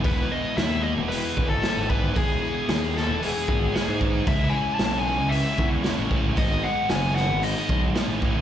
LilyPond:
<<
  \new Staff \with { instrumentName = "Lead electric guitar" } { \time 4/4 \key e \major \tempo 4 = 114 b'8 dis''8 e''8 dis''8 b'8. a'8. b'8 | gis'4 gis'8 a'8 gis'4. r8 | e''8 gis''8 a''8 gis''8 e''8. r4 r16 | dis''8 fis''8 gis''8 fis''8 dis''8. r4 r16 | }
  \new Staff \with { instrumentName = "Overdriven electric guitar" } { \time 4/4 \key e \major <b e' gis'>8 <e' gis'>8 <b e' gis'>8 <e' gis'>4. <b e' gis'>8 <e' gis'>8 | <b e' gis'>8 <e' gis'>8 <b e' gis'>8 <e' gis'>4. <b e' gis'>8 <e' gis'>8 | <gis cis' e' gis'>8 <cis' e' gis'>8 <gis cis' e' gis'>8 <cis' e' gis'>4. <gis cis' e' gis'>8 <cis' e' gis'>8 | <b dis' gis'>8 <dis' gis'>8 <b dis' gis'>8 <dis' gis'>4. <b dis' gis'>8 <dis' gis'>8 | }
  \new Staff \with { instrumentName = "Overdriven electric guitar" } { \time 4/4 \key e \major <e gis b e'>8 <gis b e'>8 <e gis b e'>4 <e gis b e'>8 <gis b e'>8 <e gis b e'>8 <gis b e'>8 | <e gis b e'>8 <gis b e'>8 <e gis b e'>4 <e gis b e'>8 <gis b e'>8 <e gis b e'>8 <gis b e'>8 | <cis gis cis' e'>8 <gis cis' e'>8 <cis gis cis' e'>4 <cis gis cis' e'>8 <gis cis' e'>8 <cis gis cis' e'>8 <gis cis' e'>8 | <gis, dis gis b dis'>8 <gis b dis'>8 <dis gis b dis'>4 <gis, dis gis b dis'>8 <gis b dis'>8 <dis gis b dis'>8 <gis b dis'>8 | }
  \new Staff \with { instrumentName = "Picked electric bass" } { \clef bass \time 4/4 \key e \major e,,8 r8 dis,8. e,,8 r16 gis,,8 r16 gis,,8. | e,,8 r8 dis,8. e,,8 r16 gis,,8 r16 gis,8. | cis,8 r8 b,,8. cis,8 r16 e,8 r16 a,,8. | gis,,8 r8 fis,,8. gis,,8 r16 b,,8 r16 a,,8. | }
  \new DrumStaff \with { instrumentName = "Drums" } \drummode { \time 4/4 <hho bd>4 <hho sn>4 hho8 bd8 <hho sn>8 bd8 | <hho bd>4 <hho sn>8 sn8 hho8 bd8 <hho sn>8 bd8 | <hho bd>4 <hho sn>4 hho8 bd8 <hho sn>8 bd8 | <hho bd>4 <hho sn>8 sn8 hho8 bd8 <hho sn>8 bd8 | }
>>